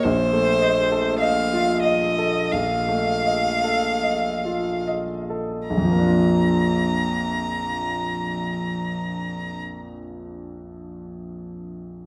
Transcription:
0.04 2.50 A#1 soft
0.04 1.20 C5 medium
0.33 0.79 A3 soft
0.62 1.09 D#5 soft
0.92 1.40 A4 soft
1.20 1.72 D#5 soft
1.20 1.83 F5 medium
1.53 2.05 F4 soft
1.83 2.53 D#5 soft
1.83 2.39 D#5 soft
2.18 2.74 A4 soft
2.52 5.67 A#1 soft
2.52 4.88 F5 soft
2.88 3.49 A3 soft
3.26 3.89 D#5 soft
3.64 4.28 A4 soft
4.03 4.70 D#5 soft
4.45 5.14 F4 soft
4.87 5.55 D#5 soft
5.30 5.70 A4 soft
5.68 9.63 A#1 soft
5.68 9.61 A#5 soft
5.77 9.70 F2 soft
5.84 9.77 F3 soft
5.91 9.84 A#3 soft
5.99 9.91 D4 soft
6.06 9.98 F4 soft

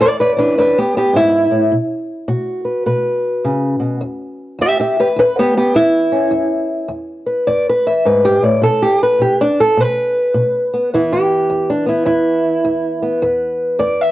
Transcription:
0.00 0.53 E2 medium
0.00 0.35 E3 medium
0.00 0.06 B4 medium
0.00 0.19 D5 loud
0.20 0.31 B4 medium
0.20 0.39 D5 loud
0.36 0.77 E3 medium
0.36 0.57 D4 medium
0.36 0.58 B4 medium
0.58 1.11 E2 medium
0.58 0.77 D4 medium
0.58 0.78 B4 medium
0.78 0.96 B3 medium
0.78 0.97 G4 medium
0.97 1.16 B3 medium
0.97 1.16 G4 medium
1.13 1.50 G#2 medium
1.13 1.73 E4 loud
1.51 1.73 A2 medium
1.72 2.25 B2 medium
2.28 2.82 B2 medium
2.28 3.99 F#4 soft
2.65 2.85 B4 medium
2.86 3.40 B2 medium
2.86 3.99 B4 medium
3.44 3.79 C#3 medium
3.79 4.02 B2 medium
4.01 4.55 E2 medium
4.58 5.12 E2 medium
4.58 4.78 G4 medium
4.58 4.79 E5 loud
4.80 4.98 G4 medium
4.80 4.99 E5 medium
5.00 5.07 G4 medium
5.00 5.18 B4 medium
5.16 5.70 E2 medium
5.16 5.38 B4 loud
5.39 5.56 B3 medium
5.39 5.56 G4 medium
5.57 5.75 B3 medium
5.57 5.76 G4 medium
5.75 6.28 E2 medium
5.75 6.90 E4 loud
6.12 6.33 C#4 soft
6.31 6.85 E2 medium
6.88 7.42 E2 medium
7.26 7.69 B4 soft
7.47 8.00 E2 medium
7.47 7.66 D5 loud
7.69 7.87 B4 loud
7.87 8.05 E5 medium
8.05 8.41 G#2 medium
8.05 8.24 B4 medium
8.25 8.43 G4 loud
8.42 8.63 A2 medium
8.42 8.62 D5 medium
8.62 9.15 B2 medium
8.62 8.82 A4 loud
8.82 9.01 G4 loud
9.03 9.21 B4 loud
9.19 9.72 B2 medium
9.19 9.39 G4 medium
9.41 9.59 D4 loud
9.60 9.80 A4 loud
9.77 10.30 B2 medium
9.77 10.93 B4 loud
10.34 10.87 B2 medium
10.74 10.91 B3 soft
10.94 11.46 E2 medium
10.94 14.12 E3 medium
10.94 11.86 B3 soft
10.94 11.12 E4 medium
11.12 11.69 G4 medium
11.50 12.03 E2 medium
11.70 11.88 D4 medium
11.86 13.02 B3 soft
11.86 12.05 E4 medium
12.05 12.59 E2 medium
12.05 13.22 E4 medium
12.65 13.18 E2 medium
13.02 14.12 B3 soft
13.22 13.75 E2 medium
13.22 14.12 B4 soft
13.79 14.12 E2 medium
13.79 14.01 D5 loud
14.01 14.12 E5 medium

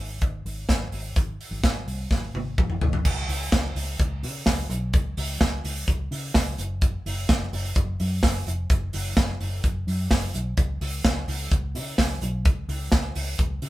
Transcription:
0.00 0.17 G#1 medium
0.21 0.41 G#1 medium
0.21 kick loud
0.21 closed hi-hat medium
0.45 0.65 G#1 medium
0.45 open hi-hat medium
0.69 0.88 G#1 loud
0.69 kick loud
0.69 snare loud
0.69 closed hi-hat medium
0.92 1.12 G#1 loud
0.92 open hi-hat medium
1.16 1.36 G#1 medium
1.16 kick loud
1.16 closed hi-hat medium
1.41 open hi-hat medium
1.51 1.61 G#1 loud
1.63 1.83 G#1 loud
1.63 kick loud
1.63 snare loud
1.63 closed hi-hat medium
1.86 2.06 C2 medium
1.86 open hi-hat medium
2.11 2.30 G#1 loud
2.11 kick loud
2.11 snare medium
2.34 2.54 G#1 medium
2.34 high tom medium
2.58 2.77 G#1 loud
2.58 kick loud
2.58 mid tom medium
2.70 mid tom medium
2.81 3.01 G#1 loud
2.81 floor tom loud
2.93 floor tom medium
3.05 3.24 C#2 medium
3.05 kick loud
3.05 crash loud
3.28 3.48 C#2 medium
3.28 hi-hat pedal medium
3.28 open hi-hat medium
3.52 3.72 C#2 medium
3.52 kick loud
3.52 snare loud
3.52 hi-hat pedal medium
3.52 open hi-hat medium
3.75 3.95 C#2 medium
3.75 hi-hat pedal medium
3.75 open hi-hat medium
3.99 4.25 C#2 loud
3.99 kick loud
3.99 hi-hat pedal medium
3.99 open hi-hat medium
4.23 4.42 C#3 loud
4.23 hi-hat pedal medium
4.23 open hi-hat medium
4.46 4.66 C#2 loud
4.46 kick loud
4.46 snare loud
4.46 hi-hat pedal medium
4.46 open hi-hat medium
4.69 4.94 B1 loud
4.69 hi-hat pedal medium
4.69 open hi-hat medium
4.93 5.13 C#2 loud
4.93 kick loud
4.93 hi-hat pedal medium
4.93 open hi-hat medium
5.17 5.37 C#2 loud
5.17 hi-hat pedal medium
5.17 open hi-hat medium
5.41 5.60 C#2 loud
5.41 kick loud
5.41 snare loud
5.41 hi-hat pedal medium
5.41 open hi-hat medium
5.64 5.84 C#2 medium
5.64 hi-hat pedal medium
5.64 open hi-hat medium
5.88 6.07 C#2 medium
5.88 kick loud
5.88 hi-hat pedal medium
5.88 open hi-hat medium
6.11 6.31 C#3 loud
6.11 hi-hat pedal medium
6.11 open hi-hat medium
6.34 6.54 C#2 loud
6.34 kick loud
6.34 snare loud
6.34 hi-hat pedal medium
6.34 open hi-hat medium
6.58 6.97 F#1 loud
6.58 hi-hat pedal medium
6.58 open hi-hat medium
6.81 kick loud
6.81 hi-hat pedal medium
6.81 open hi-hat medium
7.06 7.25 F#1 loud
7.06 hi-hat pedal medium
7.06 open hi-hat medium
7.29 7.48 F#1 loud
7.29 kick loud
7.29 snare loud
7.29 hi-hat pedal medium
7.29 open hi-hat medium
7.53 7.72 F#1 loud
7.53 hi-hat pedal medium
7.53 open hi-hat medium
7.75 7.95 F#1 medium
7.75 kick loud
7.75 hi-hat pedal medium
7.75 open hi-hat medium
8.00 8.19 F#2 loud
8.00 hi-hat pedal medium
8.00 open hi-hat medium
8.23 8.42 F#1 loud
8.23 kick loud
8.23 snare loud
8.23 hi-hat pedal medium
8.23 open hi-hat medium
8.46 8.66 F1 medium
8.46 hi-hat pedal medium
8.46 open hi-hat medium
8.70 8.89 F#1 loud
8.70 kick loud
8.70 hi-hat pedal medium
8.70 open hi-hat medium
8.93 9.13 F#1 loud
8.93 hi-hat pedal medium
8.93 open hi-hat medium
9.17 9.36 F#1 loud
9.17 kick loud
9.17 snare loud
9.17 hi-hat pedal medium
9.17 open hi-hat medium
9.40 9.60 F#1 medium
9.40 hi-hat pedal medium
9.40 open hi-hat medium
9.64 9.83 F#1 medium
9.64 kick loud
9.64 hi-hat pedal medium
9.64 open hi-hat medium
9.87 10.07 F#2 medium
9.87 hi-hat pedal medium
9.87 open hi-hat medium
10.11 10.30 F#1 medium
10.11 kick loud
10.11 snare loud
10.11 hi-hat pedal medium
10.11 open hi-hat medium
10.34 10.54 B1 medium
10.34 hi-hat pedal medium
10.34 open hi-hat medium
10.57 10.77 C#2 loud
10.57 kick loud
10.57 hi-hat pedal medium
10.57 open hi-hat medium
10.81 11.01 C#2 medium
10.81 hi-hat pedal medium
10.81 open hi-hat medium
11.04 11.24 C#2 loud
11.04 kick loud
11.04 snare loud
11.04 hi-hat pedal medium
11.04 open hi-hat medium
11.28 11.47 C#2 loud
11.28 hi-hat pedal medium
11.28 open hi-hat medium
11.51 11.76 C#2 loud
11.51 kick loud
11.51 hi-hat pedal medium
11.51 open hi-hat medium
11.75 11.94 C#3 loud
11.75 hi-hat pedal medium
11.75 open hi-hat medium
11.98 12.18 C#2 loud
11.98 kick loud
11.98 snare loud
11.98 hi-hat pedal medium
11.98 open hi-hat medium
12.21 12.45 B1 loud
12.21 hi-hat pedal medium
12.21 open hi-hat medium
12.45 12.65 C#2 loud
12.45 kick loud
12.45 hi-hat pedal medium
12.45 open hi-hat medium
12.68 12.88 C#2 loud
12.68 hi-hat pedal medium
12.68 open hi-hat medium
12.92 13.12 C#2 loud
12.92 kick loud
12.92 snare loud
12.92 hi-hat pedal medium
12.92 open hi-hat medium
13.15 13.35 C#2 medium
13.15 hi-hat pedal medium
13.15 open hi-hat medium
13.38 13.58 C#2 medium
13.38 kick loud
13.38 hi-hat pedal medium
13.38 open hi-hat medium
13.62 13.69 C#3 medium
13.62 hi-hat pedal medium
13.62 open hi-hat medium

